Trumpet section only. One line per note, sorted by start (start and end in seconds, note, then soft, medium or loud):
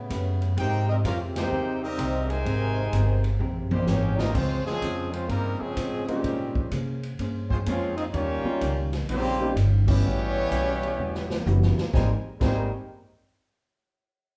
0.59 0.87 D#4 loud
0.59 0.87 A#4 medium
0.59 0.87 C5 medium
0.59 0.87 G5 loud
0.89 0.97 C4 medium
0.89 0.97 G4 medium
0.89 0.97 A#4 medium
0.89 0.96 D#5 medium
1.05 1.19 C#4 medium
1.05 1.19 G4 medium
1.05 1.19 A#4 medium
1.05 1.19 F5 loud
1.36 1.80 D#4 medium
1.36 1.80 A#4 medium
1.36 1.80 C5 medium
1.36 1.80 G5 medium
1.83 2.27 C4 loud
1.83 2.27 G4 loud
1.83 2.27 A#4 loud
1.83 2.27 D#5 loud
2.30 3.24 D#4 medium
2.30 3.24 A#4 medium
2.30 3.24 C5 medium
2.30 3.24 G#5 loud
3.73 3.86 A#3 medium
3.73 3.86 D#4 medium
3.73 3.87 G4 medium
3.73 3.87 C5 loud
3.87 4.19 A#3 medium
3.87 4.19 D#4 medium
3.87 4.18 G4 loud
3.87 4.19 C#5 loud
4.19 4.35 C4 medium
4.19 4.35 G4 medium
4.19 4.35 A#4 medium
4.19 4.35 D#5 loud
4.35 4.66 G#3 loud
4.35 4.66 C#4 loud
4.35 4.66 F4 medium
4.35 4.67 C5 loud
4.67 5.11 C4 medium
4.67 5.11 C#4 medium
4.67 5.10 G#4 loud
5.14 5.29 G#3 medium
5.14 5.30 C#4 medium
5.14 5.30 F4 medium
5.14 5.30 C5 medium
5.30 5.59 G3 medium
5.30 5.59 C4 medium
5.30 5.59 D#4 medium
5.30 5.59 A#4 loud
5.61 6.08 C4 medium
5.61 6.08 C#4 medium
5.61 6.08 G#4 loud
6.09 6.68 C4 medium
6.09 6.68 C#4 medium
6.09 6.68 G4 medium
7.51 7.58 G#3 medium
7.51 7.58 C#4 medium
7.51 7.58 F4 medium
7.51 7.58 C5 loud
7.67 7.96 G#3 medium
7.67 7.96 C4 medium
7.67 7.96 F4 medium
7.67 7.96 C#5 medium
7.97 8.05 C4 medium
7.97 8.05 F4 medium
7.97 8.05 G#4 medium
7.97 8.05 D#5 medium
8.13 8.88 A#3 medium
8.13 8.89 F4 loud
8.13 8.88 G4 loud
8.13 8.89 C#5 loud
9.10 9.54 A#3 loud
9.10 9.54 F4 loud
9.10 9.53 G4 loud
9.10 9.53 C5 loud
9.88 11.42 B3 loud
9.88 11.43 E4 medium
9.88 11.43 G4 loud
9.88 11.42 C#5 loud
11.94 12.11 D#4 medium
11.94 12.11 A#4 medium
11.94 12.12 C5 medium
11.94 12.11 G#5 loud
12.42 12.71 D#4 medium
12.42 12.71 A#4 medium
12.42 12.71 C5 medium
12.42 12.71 G#5 medium